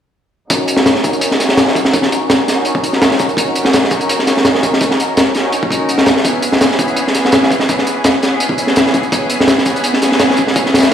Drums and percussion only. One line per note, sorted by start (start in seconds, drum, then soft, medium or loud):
0.50 kick loud
0.50 closed hi-hat medium
0.68 closed hi-hat medium
0.77 snare medium
0.86 snare loud
0.86 closed hi-hat medium
0.95 snare medium
1.04 kick medium
1.04 closed hi-hat medium
1.13 closed hi-hat soft
1.21 closed hi-hat medium
1.31 snare soft
1.40 snare soft
1.40 closed hi-hat medium
1.49 snare soft
1.57 snare loud
1.57 closed hi-hat medium
1.67 snare medium
1.75 kick medium
1.75 closed hi-hat medium
1.85 snare soft
1.93 kick loud
1.93 closed hi-hat medium
2.02 snare soft
2.12 closed hi-hat medium
2.30 snare loud
2.30 closed hi-hat medium
2.48 snare soft
2.48 closed hi-hat medium
2.65 closed hi-hat medium
2.75 kick medium
2.84 closed hi-hat medium
2.93 snare soft
3.02 snare medium
3.02 closed hi-hat medium
3.11 snare medium
3.19 kick medium
3.19 closed hi-hat medium
3.29 closed hi-hat soft
3.37 kick medium
3.37 closed hi-hat medium
3.55 closed hi-hat medium
3.65 snare medium
3.73 snare loud
3.73 closed hi-hat medium
3.84 snare medium
3.91 kick medium
3.91 closed hi-hat medium
4.01 closed hi-hat soft
4.09 closed hi-hat medium
4.19 snare soft
4.27 snare soft
4.27 closed hi-hat medium
4.37 snare soft
4.45 snare medium
4.45 closed hi-hat medium
4.55 snare medium
4.63 kick medium
4.63 closed hi-hat medium
4.73 snare soft
4.81 kick loud
4.81 closed hi-hat medium
4.91 snare soft
5.00 closed hi-hat medium
5.17 snare loud
5.17 closed hi-hat medium
5.35 snare soft
5.35 closed hi-hat medium
5.52 closed hi-hat medium
5.63 kick medium
5.71 kick medium
5.71 closed hi-hat medium
5.89 closed hi-hat medium
5.98 snare soft
6.06 snare loud
6.06 closed hi-hat medium
6.17 snare soft
6.25 kick loud
6.25 closed hi-hat medium
6.42 closed hi-hat medium
6.52 snare soft
6.61 snare loud
6.61 closed hi-hat medium
6.71 snare medium
6.79 kick loud
6.79 closed hi-hat medium
6.88 closed hi-hat soft
6.96 closed hi-hat medium
7.07 snare soft
7.15 snare soft
7.15 closed hi-hat medium
7.25 snare soft
7.32 snare loud
7.32 closed hi-hat medium
7.43 snare medium
7.51 kick medium
7.51 closed hi-hat medium
7.60 snare soft
7.69 kick loud
7.69 closed hi-hat medium
7.78 snare soft
7.87 closed hi-hat medium
8.04 snare loud
8.04 closed hi-hat medium
8.23 snare soft
8.23 closed hi-hat medium
8.40 closed hi-hat medium
8.49 kick medium
8.58 closed hi-hat medium
8.67 snare soft
8.76 snare loud
8.76 closed hi-hat medium
8.86 snare soft
8.94 kick medium
8.94 closed hi-hat medium
9.03 closed hi-hat soft
9.12 kick loud
9.12 closed hi-hat medium
9.30 closed hi-hat medium
9.40 snare medium
9.48 snare medium
9.48 closed hi-hat medium
9.58 snare medium
9.66 kick medium
9.66 closed hi-hat medium
9.76 closed hi-hat soft
9.84 closed hi-hat medium
9.94 snare soft
10.02 snare soft
10.02 closed hi-hat medium
10.12 snare soft
10.19 snare medium
10.19 closed hi-hat medium
10.30 snare medium
10.37 kick medium
10.37 closed hi-hat medium
10.47 snare soft
10.56 kick loud
10.56 closed hi-hat medium
10.66 snare soft
10.74 snare medium
10.74 closed hi-hat medium
10.78 snare medium
10.78 closed hi-hat medium
10.83 snare medium
10.83 closed hi-hat medium